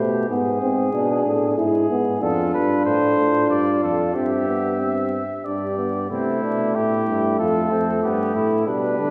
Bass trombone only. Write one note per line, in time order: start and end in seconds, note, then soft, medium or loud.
0.00 0.29 B2 medium
0.30 0.61 G#2 medium
0.62 0.93 G#2 medium
0.94 1.25 B2 medium
1.26 1.57 A2 medium
1.58 1.89 G#2 medium
1.90 2.21 G#2 medium
2.22 2.53 F2 medium
2.54 2.85 G2 medium
2.86 3.17 A2 medium
3.18 3.50 A2 medium
3.50 3.82 G2 medium
3.83 4.14 F2 medium
4.15 5.15 G2 medium
5.45 6.07 G2 medium
6.10 6.41 C3 medium
6.43 6.75 B2 medium
6.75 7.06 A2 medium
7.07 7.41 G2 medium
7.40 7.71 F2 medium
7.71 8.03 F2 medium
8.03 8.35 G2 medium
8.35 8.67 A2 medium
8.68 9.01 B2 medium
8.99 9.10 D3 medium